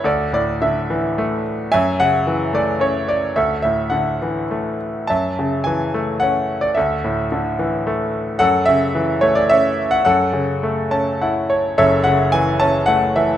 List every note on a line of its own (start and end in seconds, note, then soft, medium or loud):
0.04 1.67 D2 medium
0.04 0.85 A4 soft
0.04 0.32 D5 medium
0.33 1.41 A2 soft
0.33 0.63 D5 medium
0.62 1.69 D3 soft
0.62 1.13 E5 medium
0.90 1.70 E3 soft
1.18 1.71 A3 medium
1.72 3.33 F#2 medium
1.72 2.49 E5 medium
1.72 2.00 G#5 medium
2.00 3.05 C#3 soft
2.00 2.55 F#5 medium
2.27 3.33 E3 medium
2.53 3.33 A3 soft
2.53 2.82 D5 medium
2.80 3.34 C#4 soft
2.80 3.09 C#5 medium
3.08 3.34 D5 medium
3.36 5.04 D2 medium
3.36 4.17 A4 soft
3.36 3.61 E5 medium
3.62 4.76 A2 soft
3.62 3.92 E5 medium
3.90 5.04 D3 soft
3.90 4.44 F#5 medium
4.22 5.06 E3 soft
4.51 5.07 A3 soft
5.07 6.73 F#2 soft
5.07 5.90 E5 medium
5.07 5.66 A5 medium
5.39 6.47 C#3 soft
5.64 6.74 E3 soft
5.64 6.16 G#5 medium
5.94 6.74 A3 soft
6.20 6.75 C#4 soft
6.20 6.63 F#5 medium
6.61 6.76 D5 medium
6.75 8.36 D2 medium
6.75 7.55 A4 soft
6.75 7.26 E5 medium
7.04 8.10 A2 soft
7.32 8.37 D3 soft
7.59 8.38 E3 soft
7.87 8.38 A3 soft
8.39 10.03 F#2 medium
8.39 9.18 A4 medium
8.39 8.67 F#5 medium
8.66 9.76 C#3 soft
8.66 9.24 E5 medium
8.95 10.03 E3 soft
9.21 10.04 A3 medium
9.21 9.35 C#5 medium
9.35 9.50 D5 medium
9.49 10.05 C#4 soft
9.49 9.93 E5 medium
9.91 10.03 F#5 medium
10.05 11.74 F#2 medium
10.05 11.46 A4 medium
10.05 11.20 F#5 medium
10.33 11.46 C#3 soft
10.63 11.75 A3 soft
10.91 11.76 C#4 soft
10.91 11.19 A5 medium
11.22 11.77 E4 soft
11.22 11.48 F#5 soft
11.50 11.76 C#5 soft
11.78 13.37 F#1 medium
11.78 13.37 F#2 medium
11.78 12.57 A4 medium
11.78 12.57 C#5 medium
11.78 12.04 E5 medium
12.04 13.13 C#3 soft
12.04 12.31 F#5 medium
12.32 13.15 E3 soft
12.32 12.61 G#5 medium
12.60 13.37 C#4 medium
12.60 12.89 A5 medium
12.86 13.37 A3 soft
12.86 13.16 F#5 medium
13.16 13.37 E3 soft
13.16 13.37 E5 medium